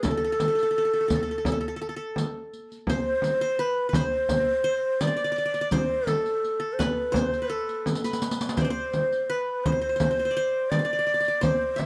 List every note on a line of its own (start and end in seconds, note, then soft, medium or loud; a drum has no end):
0.03 0.10 A4 medium
0.03 2.17 A4 loud
0.03 riq medium
0.03 frame drum medium
0.11 0.17 A4 soft
0.17 0.24 A4 medium
0.24 0.32 A4 soft
0.32 0.40 A4 medium
0.40 0.47 A4 soft
0.40 riq soft
0.40 frame drum medium
0.48 0.55 A4 soft
0.55 0.62 A4 soft
0.55 riq soft
0.63 0.70 A4 soft
0.71 0.78 A4 soft
0.78 0.84 A4 soft
0.85 0.93 A4 soft
0.93 1.00 A4 soft
1.01 1.08 A4 soft
1.08 1.15 A4 soft
1.08 riq medium
1.08 frame drum medium
1.15 1.22 A4 soft
1.23 1.31 A4 soft
1.31 1.38 A4 soft
1.38 1.45 A4 soft
1.45 1.51 A4 soft
1.45 riq medium
1.45 frame drum medium
1.52 1.60 A4 medium
1.61 1.68 A4 soft
1.68 1.76 A4 soft
1.76 1.81 A4 soft
1.81 1.89 A4 medium
1.89 1.96 A4 soft
1.96 3.14 A4 medium
2.16 riq medium
2.16 frame drum medium
2.53 riq soft
2.72 riq soft
2.87 3.41 C5 medium
2.87 3.62 C5 medium
2.87 riq medium
2.87 frame drum medium
3.22 riq soft
3.22 frame drum medium
3.41 3.65 C5 medium
3.41 riq soft
3.59 3.89 B4 medium
3.59 3.98 B4 medium
3.89 4.01 B4 medium
3.93 4.64 C5 medium
3.93 5.03 C5 loud
3.93 riq medium
3.93 frame drum medium
4.29 riq medium
4.29 frame drum medium
4.64 5.70 C5 medium
5.01 5.07 D5 medium
5.01 5.73 D5 loud
5.01 riq medium
5.01 frame drum medium
5.07 5.16 D5 medium
5.17 5.24 D5 medium
5.24 5.31 D5 medium
5.32 5.38 D5 medium
5.36 5.45 D5 soft
5.36 riq soft
5.46 5.54 D5 medium
5.54 5.61 D5 medium
5.54 riq soft
5.61 6.60 D5 medium
5.71 6.78 C5 medium
5.71 6.10 C5 loud
5.71 riq medium
5.71 frame drum medium
6.07 6.59 A4 medium
6.07 6.75 A4 medium
6.07 riq soft
6.07 frame drum medium
6.26 riq soft
6.44 riq soft
6.60 7.49 A4 medium
6.73 6.83 C5 medium
6.79 7.18 B4 medium
6.79 7.20 B4 medium
6.79 riq medium
6.79 frame drum medium
7.12 7.48 C5 medium
7.12 riq medium
7.12 frame drum medium
7.19 7.54 C5 medium
7.33 riq soft
7.42 8.04 B4 soft
7.50 8.67 A4 medium
7.50 8.22 A4 medium
7.69 riq soft
7.86 riq medium
7.86 frame drum medium
7.95 riq medium
8.04 8.64 B4 medium
8.04 riq medium
8.13 riq medium
8.22 riq medium
8.31 riq medium
8.41 riq medium
8.49 riq medium
8.57 8.64 C5 medium
8.57 8.66 C5 medium
8.57 riq medium
8.57 frame drum medium
8.61 8.73 B4 medium
8.61 8.70 C5 medium
8.61 9.59 D5 medium
8.70 9.36 C5 medium
8.70 9.32 C5 medium
8.93 riq soft
8.93 frame drum medium
9.12 riq soft
9.30 9.72 B4 medium
9.30 9.66 B4 medium
9.64 10.72 C5 loud
9.64 9.72 C5 medium
9.64 frame drum medium
9.72 9.81 C5 medium
9.81 9.89 C5 medium
9.89 9.96 C5 soft
9.96 10.02 C5 medium
9.96 riq medium
10.00 10.10 C5 soft
10.00 frame drum medium
10.11 10.19 C5 medium
10.19 10.25 C5 soft
10.25 10.36 C5 medium
10.31 10.71 D5 soft
10.37 11.41 C5 medium
10.70 11.44 D5 loud
10.70 10.79 D5 medium
10.70 riq soft
10.70 frame drum medium
10.79 10.84 D5 soft
10.85 10.93 D5 medium
10.93 10.98 D5 soft
10.99 11.06 D5 medium
11.07 11.14 D5 soft
11.07 riq soft
11.14 11.20 D5 soft
11.20 11.28 D5 soft
11.25 11.86 D5 medium
11.25 riq soft
11.41 11.86 C5 medium
11.41 11.81 C5 loud
11.41 riq soft
11.41 frame drum medium
11.76 11.86 E5 medium
11.76 11.86 E5 loud
11.76 riq soft
11.76 frame drum medium